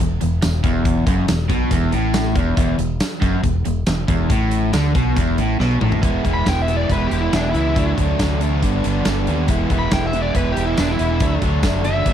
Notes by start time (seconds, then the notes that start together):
0.00 E1 E2
0.21 E1 E2, closed hi-hat
0.42 E1 E2, snare, closed hi-hat, tambourine
0.64 E1 E2, kick, closed hi-hat
0.85 kick, closed hi-hat
1.07 F#1 F#2, kick, closed hi-hat
1.28 E1 E2, snare, closed hi-hat, tambourine
1.50 B1 B2, kick, closed hi-hat
1.71 E1 E2, kick, closed hi-hat
1.92 A1 A2, closed hi-hat
2.14 snare, closed hi-hat, tambourine
2.35 E1 E2, kick, closed hi-hat
2.57 E1 E2, kick, closed hi-hat
2.79 E1 E2, closed hi-hat
3.00 snare, closed hi-hat, tambourine
3.21 F#1 F#2, kick, closed hi-hat
3.43 E1 E2, kick, closed hi-hat
3.65 E1 E2, closed hi-hat
3.86 E1 E2, snare, closed hi-hat, tambourine
4.08 E1 E2, kick, closed hi-hat
4.30 A1 A2, kick, closed hi-hat
4.51 closed hi-hat
4.73 D2 D3, snare, closed hi-hat, tambourine
4.95 B1 B2, kick, closed hi-hat
5.17 E1 E2, kick, closed hi-hat
5.38 A1 A2, closed hi-hat
5.60 B1 B2, snare
5.81 A1 A2, mid tom
5.92 floor tom
6.02 E1 E3 G#3 B3 E4, kick, closed hi-hat
6.24 E1 E3 G#3 B3 E4, kick, closed hi-hat
6.34 B5
6.46 E1 E3 G#3 B3 E4 G5, kick, snare, closed hi-hat, tambourine
6.62 E5
6.68 E3 G#3 B3 E4, closed hi-hat
6.76 D5
6.90 E1 E3 G#3 B3 E4 B4, kick, closed hi-hat
7.07 G4
7.11 E1 E3 G#3 B3 E4, closed hi-hat
7.21 E4
7.32 E1 E3 G#3 B3 D4 E4, snare, closed hi-hat, tambourine
7.50 E4
7.54 C#2 E3 G#3 B3 E4, closed hi-hat
7.76 D2 D3 F#3 A3 D4, kick, closed hi-hat
7.98 D2 D3 F#3 A3 D4, kick, closed hi-hat
8.19 D2 D3 F#3 A3 D4, kick, snare, closed hi-hat, tambourine
8.41 D3 F#3 A3 D4, closed hi-hat
8.62 G1 G2 D3 G3 B3 D4, kick, closed hi-hat
8.84 G1 G2 D3 G3 B3 D4, closed hi-hat
9.05 G1 G2 D3 G3 B3 D4, snare, closed hi-hat, tambourine
9.27 D#2 G2 D3 G3 B3 D4, closed hi-hat
9.48 E1 E3 G#3 B3 E4, kick, closed hi-hat
9.70 E1 E3 G#3 B3 E4, kick, closed hi-hat
9.79 B5
9.91 E1 E3 G#3 B3 E4 G5, kick, snare, closed hi-hat, tambourine
10.07 E5
10.13 E3 G#3 B3 E4, closed hi-hat
10.21 D5
10.34 E1 E3 G#3 B3 E4 B4, kick, closed hi-hat
10.52 E3 G#3 B3 G4
10.56 E1 E4, closed hi-hat
10.66 E4
10.77 E1 E3 G#3 B3 D4 E4, snare, closed hi-hat, tambourine
10.92 E4
10.99 E1 E3 G#3 B3 E4, closed hi-hat
11.20 D2 D3 F#3 A3 D4, kick, closed hi-hat
11.42 D2 D3 F#3 A3 D4, kick, closed hi-hat
11.63 F#1 D3 F#3 A3 D4, kick, snare, closed hi-hat, tambourine
11.84 D3 F#3 A3 D4 E5, closed hi-hat
12.05 G1 G2 D3 G3 B3 D4, kick, closed hi-hat